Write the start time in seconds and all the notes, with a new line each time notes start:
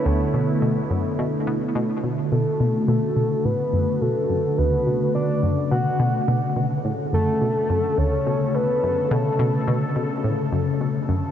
Already playing: D3 A3 B3 E4
0.05 D2 A4
0.34 B2
0.62 B2
0.90 F#2
1.19 B2
1.47 B2
1.75 B2
2.04 B2
2.32 B2 C#3 F#4 A4
2.60 B2
2.88 B2 A4
3.17 B2
3.45 A2 B4
3.73 F#2
4.01 B2 A4
4.30 F#2
4.58 D2 B4
4.87 B2
5.15 B2 D5
5.43 F#2
5.71 B2 F#5
6.00 B2
6.28 B2
6.56 B2
6.85 A2 A4
7.13 F#2 A4
7.41 B2
7.70 F#2
7.98 D2 C#5
8.26 B2
8.55 B2 B4
8.83 F#2
9.11 B2 A4
9.39 B2
9.68 B2
9.96 B2
10.24 A2
10.52 F#2
10.81 B2
11.09 F#2